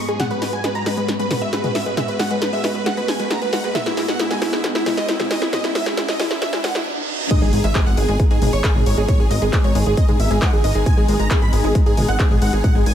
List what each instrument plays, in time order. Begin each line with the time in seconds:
Already playing: string section G#2 G#3 B3 D#4 D#5, riser
0.08 synth pluck G#3, supersaw synth G#4, digital synth lead G#4, closed hi-hat
0.20 synth pluck G#3, string section C#4 F#4, supersaw synth F#5, digital synth lead F#5, snare, closed hi-hat, mid tom
0.31 synth pluck G#3, digital synth lead B4, supersaw synth B4, closed hi-hat
0.42 synth pluck G#3, supersaw synth B4, digital synth lead B4, snare, open hi-hat
0.53 synth pluck G#3, supersaw synth G#5, digital synth lead G#5, closed hi-hat
0.64 synth pluck G#3, supersaw synth B4, digital synth lead B4, snare, closed hi-hat
0.75 synth pluck G#3, supersaw synth A#5, digital synth lead A#5, closed hi-hat
0.86 synth pluck G#3, supersaw synth B4, digital synth lead B4, snare, open hi-hat
0.97 synth pluck G#3, supersaw synth B4, digital synth lead B4, closed hi-hat
1.08 synth pluck G#3, snare, closed hi-hat
1.20 synth pluck G#3, digital synth lead B4, supersaw synth B4, closed hi-hat
1.31 synth pluck G#3, supersaw synth B4, digital synth lead B4, snare, open hi-hat, mid tom
1.42 synth pluck G#3, supersaw synth E5, digital synth lead E5, closed hi-hat
1.53 synth pluck G#3, digital synth lead B4, supersaw synth B4, snare, closed hi-hat
1.64 synth pluck G#3, supersaw synth B4, digital synth lead B4, closed hi-hat, mid tom
1.75 synth pluck G#3, supersaw synth E5, digital synth lead E5, snare, open hi-hat
1.86 synth pluck G#3, supersaw synth B4, digital synth lead B4, closed hi-hat
1.97 synth pluck G#3, digital synth lead E5, supersaw synth E5, snare, closed hi-hat, mid tom
2.08 synth pluck G#3, digital synth lead B4, supersaw synth B4, closed hi-hat
2.19 synth pluck G#3, digital synth lead F#5, supersaw synth F#5, snare, open hi-hat
2.31 synth pluck G#3, supersaw synth B4, digital synth lead B4, closed hi-hat
2.42 synth pluck G#3, digital synth lead B4, supersaw synth B4, snare, closed hi-hat
2.53 synth pluck G#3, digital synth lead E5, supersaw synth E5, open hi-hat
2.64 synth pluck G#3, supersaw synth B4, digital synth lead B4, snare, open hi-hat
2.75 synth pluck G#3, digital synth lead B4, supersaw synth B4, closed hi-hat
2.86 synth pluck G#3, supersaw synth F#5, digital synth lead F#5, snare, closed hi-hat
2.97 synth pluck G#3, supersaw synth B4, digital synth lead B4, closed hi-hat
3.08 synth pluck G#3, supersaw synth G#5, digital synth lead G#5, snare, open hi-hat
3.19 synth pluck G#3, supersaw synth B4, digital synth lead B4, closed hi-hat
3.30 synth pluck G#3, digital synth lead A#5, supersaw synth A#5, snare, closed hi-hat
3.42 synth pluck G#3, digital synth lead B4, supersaw synth B4, closed hi-hat
3.53 synth pluck G#3, supersaw synth F#5, digital synth lead F#5, snare, open hi-hat
3.64 synth pluck G#3, digital synth lead B4, supersaw synth B4, closed hi-hat
3.75 string section G#2 G#3 B3 D#4, synth pluck G#3, digital synth lead E5, supersaw synth E5, snare, closed hi-hat, mid tom
3.86 synth pluck G#3, digital synth lead E4, supersaw synth E4, snare, closed hi-hat
3.97 synth pluck G#3, digital synth lead E4, supersaw synth E4, snare, open hi-hat
4.08 synth pluck G#3, digital synth lead F#5, supersaw synth F#5, snare, closed hi-hat
4.19 synth pluck G#3, digital synth lead E4, supersaw synth E4, snare, closed hi-hat
4.30 synth pluck G#3, digital synth lead G#5, supersaw synth G#5, snare, closed hi-hat
4.42 synth pluck G#3, digital synth lead E4, supersaw synth E4, snare, open hi-hat
4.53 synth pluck G#3, supersaw synth E4, digital synth lead E4, snare, closed hi-hat
4.64 synth pluck G#3, snare, closed hi-hat
4.75 synth pluck G#3, digital synth lead E4, supersaw synth E4, snare, closed hi-hat
4.86 synth pluck G#3, digital synth lead E4, supersaw synth E4, snare, open hi-hat, mid tom
4.97 synth pluck G#3, digital synth lead D#5, supersaw synth D#5, snare, closed hi-hat
5.08 synth pluck G#3, digital synth lead E4, supersaw synth E4, snare, closed hi-hat
5.19 synth pluck G#3, digital synth lead E4, supersaw synth E4, snare, closed hi-hat, mid tom
5.31 synth pluck G#3, digital synth lead D#5, supersaw synth D#5, snare, open hi-hat
5.42 synth pluck G#3, digital synth lead E4, supersaw synth E4, snare, closed hi-hat
5.53 synth pluck G#3, digital synth lead D#5, supersaw synth D#5, snare, closed hi-hat, mid tom
5.64 synth pluck G#3, supersaw synth E4, digital synth lead E4, snare, closed hi-hat
5.75 synth pluck G#3, supersaw synth E5, digital synth lead E5, snare, open hi-hat
5.86 synth pluck G#3, supersaw synth E4, digital synth lead E4, snare
5.97 synth pluck G#3, supersaw synth E4, digital synth lead E4, snare, closed hi-hat
6.08 synth pluck G#3, digital synth lead D#5, supersaw synth D#5, snare, open hi-hat
6.20 synth pluck G#3, supersaw synth E4, digital synth lead E4, snare, open hi-hat
6.31 synth pluck G#3, digital synth lead E4, supersaw synth E4, snare, closed hi-hat
6.42 synth pluck G#3, digital synth lead E5, supersaw synth E5, snare, closed hi-hat, reverse cymbal
6.53 synth pluck G#3, supersaw synth E4, digital synth lead E4, snare, closed hi-hat
6.64 synth pluck G#3, digital synth lead F#5, supersaw synth F#5, snare, open hi-hat
6.75 synth pluck G#3, supersaw synth E4, digital synth lead E4, snare, closed hi-hat
7.31 string section G#3 B3 D#4, synth pluck G#3, digital synth lead D#5, supersaw synth D#5, kick, closed hi-hat, mid tom, crash, impact
7.42 analog synth bass G#1, synth pluck G#3, supersaw synth G#4, digital synth lead G#4
7.53 analog synth bass G#1, synth pluck G#3, digital synth lead G#4, supersaw synth G#4, open hi-hat
7.64 analog synth bass G#1, synth pluck G#3, digital synth lead E5, supersaw synth E5, closed hi-hat
7.75 synth pluck G#3, digital synth lead G#4, supersaw synth G#4, kick, clap, closed hi-hat
7.86 analog synth bass G#1, synth pluck G#3, digital synth lead F#5, supersaw synth F#5
7.97 analog synth bass G#1, synth pluck G#3, digital synth lead G#4, supersaw synth G#4, open hi-hat
8.08 analog synth bass G#1, synth pluck G#3, digital synth lead G#4, supersaw synth G#4, closed hi-hat
8.20 synth pluck G#3, kick, closed hi-hat
8.31 analog synth bass G#2, synth pluck G#3, supersaw synth G#4, digital synth lead G#4, closed hi-hat
8.42 analog synth bass G#1, synth pluck G#3, digital synth lead G#4, supersaw synth G#4, open hi-hat, mid tom
8.53 analog synth bass G#1, synth pluck G#3, digital synth lead C#5, supersaw synth C#5, closed hi-hat
8.64 synth pluck G#3, digital synth lead G#4, supersaw synth G#4, kick, clap, closed hi-hat
8.75 analog synth bass G#1, synth pluck G#3, digital synth lead G#4, supersaw synth G#4, mid tom
8.86 analog synth bass G#1, synth pluck G#3, digital synth lead C#5, supersaw synth C#5, open hi-hat
8.97 analog synth bass G#1, synth pluck G#3, digital synth lead G#4, supersaw synth G#4, closed hi-hat
9.08 synth pluck G#3, digital synth lead C#5, supersaw synth C#5, kick, closed hi-hat, mid tom
9.20 analog synth bass G#1, synth pluck G#3, digital synth lead G#4, supersaw synth G#4
9.31 analog synth bass G#1, synth pluck G#3, digital synth lead D#5, supersaw synth D#5, open hi-hat
9.42 analog synth bass G#1, synth pluck G#3, digital synth lead G#4, supersaw synth G#4, closed hi-hat
9.53 synth pluck G#3, digital synth lead G#4, supersaw synth G#4, kick, clap, closed hi-hat
9.64 analog synth bass G#1, synth pluck G#3, digital synth lead C#5, supersaw synth C#5, closed hi-hat
9.75 analog synth bass G#1, synth pluck G#3, supersaw synth G#4, digital synth lead G#4, open hi-hat
9.86 analog synth bass G#1, synth pluck G#3, supersaw synth G#4, digital synth lead G#4, closed hi-hat
9.97 synth pluck G#3, supersaw synth D#5, digital synth lead D#5, kick, closed hi-hat
10.09 analog synth bass G#2, synth pluck G#3, supersaw synth G#4, digital synth lead G#4, closed hi-hat, mid tom
10.20 analog synth bass G#1, synth pluck G#3, digital synth lead E5, supersaw synth E5, open hi-hat
10.31 analog synth bass G#1, synth pluck G#3, digital synth lead G#4, supersaw synth G#4, closed hi-hat
10.42 synth pluck G#3, digital synth lead F#5, supersaw synth F#5, kick, clap, closed hi-hat
10.53 analog synth bass G#1, synth pluck G#3, digital synth lead G#4, supersaw synth G#4
10.64 analog synth bass G#1, synth pluck G#3, supersaw synth D#5, digital synth lead D#5, open hi-hat
10.75 analog synth bass G#1, synth pluck G#3, supersaw synth G#4, digital synth lead G#4, closed hi-hat
10.86 synth pluck G#3, supersaw synth G#5, digital synth lead G#5, kick, closed hi-hat, mid tom
10.97 analog synth bass G#1, synth pluck G#3, supersaw synth G#4, digital synth lead G#4
11.08 analog synth bass G#1, synth pluck G#3, supersaw synth G#4, digital synth lead G#4, open hi-hat
11.19 analog synth bass G#1, synth pluck G#3, supersaw synth A#5, digital synth lead A#5, closed hi-hat
11.31 synth pluck G#3, supersaw synth G#4, digital synth lead G#4, kick, clap, closed hi-hat
11.42 analog synth bass G#1, synth pluck G#3, supersaw synth B5, digital synth lead B5
11.53 analog synth bass G#1, synth pluck G#3, supersaw synth G#4, digital synth lead G#4, open hi-hat
11.64 analog synth bass G#1, synth pluck G#3, supersaw synth G#4, digital synth lead G#4, closed hi-hat
11.75 synth pluck G#3, kick, closed hi-hat
11.86 analog synth bass G#2, synth pluck G#3, supersaw synth G#4, digital synth lead G#4, closed hi-hat
11.97 analog synth bass G#1, synth pluck G#3, digital synth lead G#4, supersaw synth G#4, open hi-hat, mid tom
12.08 analog synth bass G#1, synth pluck G#3, supersaw synth F#5, digital synth lead F#5, closed hi-hat
12.19 digital synth lead G#4, supersaw synth G#4, kick, clap, closed hi-hat
12.31 analog synth bass G#1, synth pluck G#3, supersaw synth G#4, digital synth lead G#4, mid tom
12.42 analog synth bass G#1, synth pluck G#3, supersaw synth F#5, digital synth lead F#5, open hi-hat
12.53 analog synth bass G#1, synth pluck G#3, supersaw synth G#4, digital synth lead G#4, closed hi-hat
12.64 synth pluck G#3, supersaw synth F#5, digital synth lead F#5, kick, closed hi-hat, mid tom
12.75 analog synth bass G#1, synth pluck G#3, supersaw synth G#4, digital synth lead G#4
12.86 analog synth bass G#1, synth pluck G#3, supersaw synth G#5, digital synth lead G#5, open hi-hat